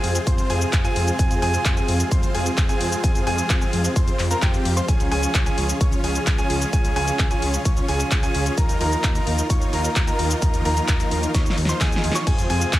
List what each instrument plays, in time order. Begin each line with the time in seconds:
Already playing: string section C3 F3 G#3, supersaw synth C4 F4 G#4, grand piano G#5
0.04 detuned saw bass F2, open hi-hat
0.15 closed hi-hat, shaker
0.27 detuned saw bass F2, supersaw synth C4 F4 C5, grand piano C6, kick, closed hi-hat, shaker
0.38 closed hi-hat, shaker
0.50 detuned saw bass F2, supersaw synth C4 F4 G#4, grand piano G#5, open hi-hat
0.61 closed hi-hat, shaker
0.73 detuned saw bass F2, kick, clap, closed hi-hat, shaker
0.84 supersaw synth C4 F4 G#4, grand piano G#5, closed hi-hat, shaker
0.96 detuned saw bass F2, open hi-hat
1.08 closed hi-hat, shaker
1.19 detuned saw bass F2, grand piano G#5, kick, closed hi-hat, shaker
1.31 detuned saw bass F2, closed hi-hat, shaker
1.42 detuned saw bass F2, supersaw synth C4 F4 G#4, grand piano G#5, open hi-hat
1.54 closed hi-hat, shaker
1.65 detuned saw bass F2, kick, clap, closed hi-hat, shaker
1.77 supersaw synth C4 F4 G#4, grand piano G#5, closed hi-hat, shaker
1.88 detuned saw bass F2, open hi-hat
2.00 closed hi-hat, shaker
2.11 detuned saw bass F2, supersaw synth C4 F4 C5, grand piano C6, kick, closed hi-hat, shaker
2.23 closed hi-hat, shaker
2.34 detuned saw bass F2, supersaw synth C4 F4 G#4, grand piano G#5, open hi-hat
2.46 closed hi-hat, shaker
2.57 detuned saw bass F2, kick, clap, closed hi-hat, shaker
2.69 supersaw synth C4 F4 G#4, grand piano G#5, closed hi-hat, shaker
2.81 detuned saw bass F2, open hi-hat
2.92 closed hi-hat, shaker
3.04 detuned saw bass F2, supersaw synth C4 F4 G#4, grand piano G#5, kick, closed hi-hat, shaker
3.15 detuned saw bass F2, closed hi-hat, shaker
3.27 detuned saw bass F2, supersaw synth C4 F4 G#4, grand piano G#5, open hi-hat
3.38 closed hi-hat, shaker
3.50 detuned saw bass F2, kick, clap, closed hi-hat, shaker
3.61 supersaw synth C4 F4 G#4, grand piano G#5, closed hi-hat, shaker
3.73 detuned saw bass F2, open hi-hat
3.85 closed hi-hat, shaker
3.96 detuned saw bass F2, grand piano C6, kick, closed hi-hat, shaker
4.08 closed hi-hat, shaker
4.19 detuned saw bass F2, clap, open hi-hat
4.31 supersaw synth C4 F4 A#4, grand piano A#5, closed hi-hat, shaker
4.42 detuned saw bass F2, supersaw synth C4 G4, grand piano G5, kick, clap, closed hi-hat, shaker
4.54 closed hi-hat, shaker
4.65 detuned saw bass F2, open hi-hat
4.77 supersaw synth C4 F4 C5, grand piano C6, closed hi-hat, shaker
4.88 detuned saw bass C#2, string section C#3, supersaw synth F4 G#4, grand piano G#5, kick, closed hi-hat, shaker
5.00 detuned saw bass C#2, closed hi-hat, shaker
5.11 detuned saw bass C#2, supersaw synth C#4 F4 G#4, grand piano G#5, open hi-hat
5.23 closed hi-hat, shaker
5.34 detuned saw bass C#2, kick, clap, closed hi-hat, shaker
5.46 supersaw synth C#4 F4 G#4, grand piano G#5, closed hi-hat, shaker
5.58 detuned saw bass C#2, open hi-hat
5.69 closed hi-hat, shaker
5.81 detuned saw bass C#2, supersaw synth C#4 F4 C#5, grand piano C#6, kick, closed hi-hat, shaker
5.92 closed hi-hat, shaker
6.04 detuned saw bass C#2, supersaw synth C#4 F4 G#4, grand piano G#5, open hi-hat
6.15 closed hi-hat, shaker
6.27 detuned saw bass C#2, kick, clap, closed hi-hat, shaker
6.38 supersaw synth C#4 F4 G#4, grand piano G#5, closed hi-hat, shaker
6.50 detuned saw bass C#2, open hi-hat
6.62 closed hi-hat, shaker
6.73 detuned saw bass C#2, supersaw synth F4, grand piano G#5, kick, closed hi-hat, shaker
6.85 detuned saw bass C#2, closed hi-hat, shaker
6.96 detuned saw bass C#2, supersaw synth C#4 F4 G#4, grand piano G#5, open hi-hat
7.08 closed hi-hat, shaker
7.19 detuned saw bass C#2, kick, clap, closed hi-hat, shaker
7.31 supersaw synth C#4 F4 G#4, grand piano G#5, closed hi-hat, shaker
7.42 detuned saw bass C#2, open hi-hat
7.54 closed hi-hat, shaker
7.65 detuned saw bass C#2, supersaw synth C#4 F4 C#5, grand piano C#6, kick, closed hi-hat, shaker
7.77 closed hi-hat, shaker
7.88 detuned saw bass C#2, supersaw synth C#4 F4 G#4, grand piano G#5, open hi-hat
8.00 closed hi-hat, shaker
8.11 detuned saw bass C#2, kick, clap, closed hi-hat, shaker
8.23 supersaw synth C#4 F4 G#4, grand piano G#5, closed hi-hat, shaker
8.35 detuned saw bass C#2, open hi-hat
8.46 closed hi-hat, shaker
8.58 detuned saw bass D#2, string section D#3 F3 A#3, supersaw synth D#4 F4 A#4, grand piano A#5, kick, closed hi-hat, shaker
8.69 detuned saw bass D#2, closed hi-hat, shaker
8.81 detuned saw bass D#2, supersaw synth D#4 F4 A#4, grand piano A#5, open hi-hat
8.92 closed hi-hat, shaker
9.04 detuned saw bass D#2, kick, clap, closed hi-hat, shaker
9.15 supersaw synth D#4 F4 A#4, grand piano A#5, closed hi-hat, shaker
9.27 detuned saw bass D#2, open hi-hat
9.38 closed hi-hat, shaker
9.50 detuned saw bass D#2, supersaw synth D#4 F4 C#5, grand piano C#6, kick, closed hi-hat, shaker
9.61 closed hi-hat, shaker
9.73 detuned saw bass D#2, supersaw synth D#4 F4 A#4, grand piano A#5, open hi-hat
9.85 closed hi-hat, shaker
9.96 detuned saw bass D#2, kick, clap, closed hi-hat, shaker
10.08 supersaw synth D#4 F4 A#4, grand piano A#5, closed hi-hat, shaker
10.19 detuned saw bass D#2, open hi-hat
10.31 closed hi-hat, shaker
10.42 detuned saw bass D#2, supersaw synth D#4 F4 A#4, grand piano A#5, kick, closed hi-hat, shaker
10.54 detuned saw bass D#2, closed hi-hat, shaker
10.65 detuned saw bass D#2, supersaw synth D#4 F4 A#4, grand piano A#5, open hi-hat
10.77 closed hi-hat, shaker
10.88 detuned saw bass D#2, kick, clap, closed hi-hat, shaker
11.00 supersaw synth D#4 F4 A#4, grand piano A#5, closed hi-hat, shaker
11.11 detuned saw bass D#2, open hi-hat
11.23 closed hi-hat, shaker
11.34 detuned saw bass D#2, supersaw synth D#4 C#5, grand piano C#6, kick, snare, closed hi-hat, shaker
11.46 snare, closed hi-hat, shaker
11.58 detuned saw bass D#2, open hi-hat
11.65 supersaw synth D#4 F4 C5, grand piano C6, snare, closed hi-hat, shaker
11.81 detuned saw bass D#2, supersaw synth D#4 F4 G#4, grand piano G#5, kick, snare, clap, closed hi-hat, shaker
11.92 snare, closed hi-hat, shaker
12.04 detuned saw bass D#2, open hi-hat
12.12 supersaw synth D#4 F4 C#5, grand piano C#6, snare, closed hi-hat, shaker
12.27 detuned saw bass F2, string section C3 G#3, supersaw synth C4 F4 G#4, grand piano G#5, kick, closed hi-hat, crash, shaker
12.38 detuned saw bass F2, closed hi-hat, shaker
12.50 detuned saw bass F2, supersaw synth C4 F4 G#4, grand piano G#5, open hi-hat
12.61 closed hi-hat, shaker
12.73 detuned saw bass F2, kick, clap, closed hi-hat, shaker